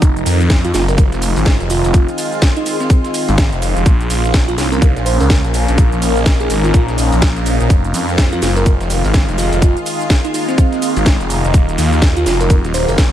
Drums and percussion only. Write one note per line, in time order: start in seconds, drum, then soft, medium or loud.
0.02 kick loud
0.02 closed hi-hat medium
0.02 shaker medium
0.02 shaker soft
0.16 closed hi-hat soft
0.16 shaker soft
0.26 open hi-hat loud
0.26 ride medium
0.26 shaker medium
0.40 closed hi-hat soft
0.40 shaker soft
0.50 kick loud
0.50 snare loud
0.50 closed hi-hat medium
0.50 shaker loud
0.50 shaker soft
0.64 closed hi-hat medium
0.64 shaker soft
0.74 snare medium
0.74 open hi-hat medium
0.74 ride medium
0.74 shaker medium
0.88 closed hi-hat soft
0.88 shaker soft
0.98 kick loud
0.98 closed hi-hat medium
0.98 shaker medium
0.98 shaker soft
1.12 snare soft
1.12 closed hi-hat soft
1.12 shaker soft
1.22 open hi-hat loud
1.22 ride medium
1.22 shaker medium
1.36 closed hi-hat soft
1.36 shaker soft
1.46 kick loud
1.46 snare loud
1.46 closed hi-hat medium
1.46 shaker medium
1.46 shaker soft
1.60 snare medium
1.60 closed hi-hat soft
1.60 shaker soft
1.70 open hi-hat loud
1.70 ride medium
1.70 shaker medium
1.84 closed hi-hat soft
1.84 closed hi-hat medium
1.84 shaker soft
1.94 kick loud
1.94 closed hi-hat medium
1.94 shaker medium
1.94 shaker soft
2.08 closed hi-hat soft
2.08 shaker soft
2.18 open hi-hat loud
2.18 ride medium
2.18 shaker medium
2.32 closed hi-hat soft
2.32 shaker soft
2.42 kick loud
2.42 snare loud
2.42 closed hi-hat medium
2.42 shaker medium
2.42 shaker soft
2.56 closed hi-hat medium
2.56 shaker soft
2.66 open hi-hat loud
2.66 ride medium
2.66 shaker medium
2.80 snare medium
2.80 closed hi-hat soft
2.80 shaker soft
2.90 kick loud
2.90 closed hi-hat medium
2.90 shaker medium
2.90 shaker soft
3.04 snare soft
3.04 closed hi-hat soft
3.04 shaker soft
3.14 open hi-hat loud
3.14 ride medium
3.14 shaker medium
3.28 closed hi-hat soft
3.28 shaker soft
3.38 kick loud
3.38 snare loud
3.38 closed hi-hat medium
3.38 shaker medium
3.38 shaker soft
3.52 snare medium
3.52 closed hi-hat soft
3.52 shaker soft
3.62 open hi-hat medium
3.62 ride medium
3.62 shaker medium
3.77 closed hi-hat medium
3.77 shaker soft
3.86 kick loud
3.86 closed hi-hat medium
3.86 shaker medium
3.86 shaker soft
4.01 closed hi-hat soft
4.01 shaker soft
4.10 open hi-hat loud
4.10 ride medium
4.10 shaker medium
4.24 closed hi-hat soft
4.24 shaker soft
4.34 kick loud
4.34 snare loud
4.34 closed hi-hat medium
4.34 shaker medium
4.34 shaker soft
4.48 closed hi-hat medium
4.48 shaker soft
4.58 snare medium
4.58 open hi-hat loud
4.58 ride medium
4.58 shaker medium
4.72 closed hi-hat soft
4.72 shaker soft
4.82 kick loud
4.82 closed hi-hat medium
4.82 shaker medium
4.82 shaker soft
4.96 snare soft
4.96 closed hi-hat soft
4.96 shaker soft
5.06 open hi-hat loud
5.06 ride medium
5.06 shaker medium
5.20 closed hi-hat soft
5.20 shaker soft
5.30 kick loud
5.30 snare loud
5.30 closed hi-hat medium
5.30 shaker medium
5.30 shaker soft
5.44 snare soft
5.44 closed hi-hat soft
5.44 shaker soft
5.54 open hi-hat loud
5.54 ride medium
5.54 shaker medium
5.68 closed hi-hat soft
5.68 closed hi-hat medium
5.68 shaker soft
5.78 kick loud
5.78 closed hi-hat medium
5.78 shaker medium
5.78 shaker soft
5.92 closed hi-hat soft
5.92 shaker soft
6.02 open hi-hat loud
6.02 ride medium
6.02 shaker medium
6.16 closed hi-hat soft
6.16 shaker soft
6.26 kick loud
6.26 snare loud
6.26 closed hi-hat medium
6.26 shaker medium
6.26 shaker soft
6.40 closed hi-hat medium
6.40 shaker soft
6.50 open hi-hat loud
6.50 ride medium
6.50 shaker medium
6.64 snare medium
6.64 closed hi-hat soft
6.64 shaker soft
6.74 kick loud
6.74 closed hi-hat medium
6.74 shaker medium
6.74 shaker soft
6.88 snare soft
6.88 closed hi-hat soft
6.88 shaker soft
6.98 open hi-hat loud
6.98 ride medium
6.98 shaker medium
7.12 closed hi-hat soft
7.12 shaker soft
7.22 kick loud
7.22 snare loud
7.22 closed hi-hat medium
7.22 shaker loud
7.22 shaker soft
7.36 snare medium
7.36 closed hi-hat soft
7.36 shaker soft
7.46 open hi-hat loud
7.46 ride medium
7.46 shaker medium
7.60 closed hi-hat soft
7.60 shaker soft
7.70 kick loud
7.70 closed hi-hat medium
7.70 shaker medium
7.70 shaker soft
7.84 closed hi-hat soft
7.84 shaker soft
7.94 open hi-hat loud
7.94 ride medium
7.94 shaker medium
8.09 closed hi-hat soft
8.09 shaker soft
8.18 kick loud
8.18 snare loud
8.18 closed hi-hat medium
8.18 shaker medium
8.18 shaker soft
8.32 closed hi-hat medium
8.32 shaker soft
8.42 snare medium
8.42 open hi-hat loud
8.42 ride medium
8.42 shaker medium
8.56 closed hi-hat soft
8.56 shaker soft
8.66 kick loud
8.66 closed hi-hat medium
8.66 shaker medium
8.66 shaker soft
8.80 snare soft
8.80 closed hi-hat soft
8.80 shaker soft
8.90 open hi-hat loud
8.90 ride medium
8.90 shaker medium
9.05 closed hi-hat soft
9.05 shaker soft
9.14 kick loud
9.14 snare loud
9.14 closed hi-hat medium
9.14 shaker medium
9.14 shaker soft
9.28 snare medium
9.28 closed hi-hat soft
9.28 shaker soft
9.38 open hi-hat medium
9.38 ride medium
9.38 shaker medium
9.53 closed hi-hat soft
9.53 shaker soft
9.62 kick loud
9.62 closed hi-hat medium
9.62 shaker medium
9.62 shaker soft
9.77 closed hi-hat soft
9.77 shaker soft
9.86 open hi-hat loud
9.86 ride medium
9.86 shaker medium
10.01 closed hi-hat soft
10.01 shaker soft
10.10 kick loud
10.10 snare loud
10.10 closed hi-hat medium
10.10 shaker medium
10.10 shaker soft
10.25 closed hi-hat medium
10.25 shaker soft
10.34 open hi-hat medium
10.34 ride medium
10.34 shaker medium
10.48 snare medium
10.48 closed hi-hat soft
10.48 shaker soft
10.58 kick loud
10.58 closed hi-hat medium
10.58 shaker medium
10.58 shaker soft
10.72 snare soft
10.72 closed hi-hat soft
10.72 shaker soft
10.82 open hi-hat loud
10.82 ride medium
10.82 shaker medium
10.96 closed hi-hat soft
10.96 shaker soft
11.06 kick loud
11.06 snare loud
11.06 closed hi-hat medium
11.06 shaker medium
11.06 shaker soft
11.20 snare medium
11.20 closed hi-hat soft
11.20 shaker soft
11.30 open hi-hat medium
11.30 ride medium
11.30 shaker medium
11.45 closed hi-hat medium
11.45 shaker soft
11.54 kick loud
11.54 closed hi-hat medium
11.54 shaker medium
11.54 shaker soft
11.69 closed hi-hat soft
11.69 shaker soft
11.78 open hi-hat loud
11.78 ride medium
11.78 shaker medium
11.93 closed hi-hat soft
11.93 shaker soft
12.02 kick loud
12.02 snare loud
12.02 closed hi-hat medium
12.02 shaker medium
12.02 shaker soft
12.17 closed hi-hat medium
12.17 shaker soft
12.26 snare medium
12.26 open hi-hat medium
12.26 ride medium
12.26 shaker medium
12.41 closed hi-hat soft
12.41 shaker soft
12.50 kick loud
12.50 closed hi-hat medium
12.50 shaker medium
12.50 shaker soft
12.64 snare soft
12.64 closed hi-hat soft
12.64 shaker soft
12.74 open hi-hat loud
12.74 ride medium
12.74 shaker medium
12.88 closed hi-hat soft
12.88 shaker soft
12.98 kick loud
12.98 snare loud
12.98 closed hi-hat medium
12.98 shaker medium
12.98 shaker soft